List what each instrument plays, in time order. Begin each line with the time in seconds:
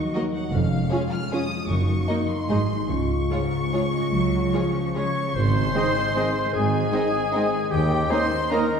Already playing: harp D#3 D#4 F#4 A#4, french horn section F#3 D#4, violin section C#6
0.15 viola section A#3 F#4, violin section A#4 D#5, harp A#4
0.34 harp D#4, violin section F#5
0.52 double bass section F1, cello section F2, harp F2, french horn section G#3 C#4, violin section F5
0.71 harp F3
0.91 viola section C#4 F4, harp F4, violin section G#4 C#5
1.11 harp F3, violin section F6
1.31 viola section C#4 F4, violin section G#4 C#5 D#6, harp C#5
1.50 harp F3
1.69 double bass section F#1, harp F#2, cello section F#2, french horn section A#3 D#4, violin section C#6
1.88 harp F#3
2.08 viola section A#3 D#4, violin section D#4 D#5, harp D#4
2.29 harp F#3, violin section C6
2.49 double bass section G#1, harp G#2, cello section G#2, viola section G#3 D#4, french horn section G#3, violin section G#4 D#5
2.69 harp D#4 D#5
2.89 double bass section C#2, cello section C#3, harp C#3, french horn section G#3 F4, violin section C#6
3.10 harp C#4
3.30 cello section G#2, viola section G#3 F4, harp F4, violin section G#4 C#5
3.52 harp C#4
3.73 viola section G#3 F4, violin section G#4 C#5, harp C#5
3.93 cello section G#3, harp C#4
4.13 double bass section C#2, harp C#3, cello section F#3
4.33 harp G#3
4.53 cello section F3, viola section G#3 F4, harp F4, violin section G#4 C#5
4.75 harp C#4
4.95 cello section C#3, viola section G#3 F4, violin section G#4 C#5 C#6, clarinet C#5, harp C#5, oboe C#5
5.16 harp C#4
5.35 double bass section G#1, tuba G#1, harp G#2, cello section G#2, oboe C5, clarinet C5, violin section C6
5.46 harp D#3
5.54 harp G#3
5.65 harp G#4
5.75 trombone section D#3 G#3, viola section G#3 C4, violin section C4 D#4, french horn section C4 D#4, harp D#5, trumpet D#5
5.86 harp G#4
5.95 harp G#5
6.06 harp D#6
6.16 trombone section D#3 G#3, viola section G#3 C4, violin section C4 D#4, french horn section C4 D#4, harp G#4, trumpet D#5
6.25 harp D#5
6.35 harp G#4
6.45 harp G#3
6.53 tuba G#1, double bass section G#1, harp G#2, cello section G#2, clarinet G#4, oboe G#4, violin section G#5
6.64 harp D#3
6.74 harp G#3
6.83 harp G#4
6.93 trombone section D#3 G#3, viola section G#3 C4, violin section C4 D#4, french horn section C4 D#4, harp D#5, trumpet D#5
7.04 harp G#4
7.14 harp G#5
7.24 harp D#6
7.33 trombone section D#3 G#3, viola section G#3 C4, violin section C4 D#4, french horn section C4 D#4, harp G#4, trumpet D#5
7.44 harp D#5
7.54 harp G#4
7.64 harp G#3
7.71 double bass section D#2, tuba D#2, cello section D#2, harp D#3, oboe G4, clarinet G4, violin section G5
7.82 harp A#3
7.92 harp C#4
8.02 harp A#4
8.10 trombone section D#3 A#3, viola section A#3, violin section C#4 D#4 C6, french horn section C#4 D#4, clarinet C5, oboe C5, trumpet D#5
8.22 harp C#5
8.32 harp A#5
8.43 harp D#6
8.51 trombone section D#3 A#3, viola section A#3, violin section C#4 D#4 A#5, french horn section C#4 D#4, oboe A#4, clarinet A#4, harp C#5, trumpet D#5
8.72 harp A#4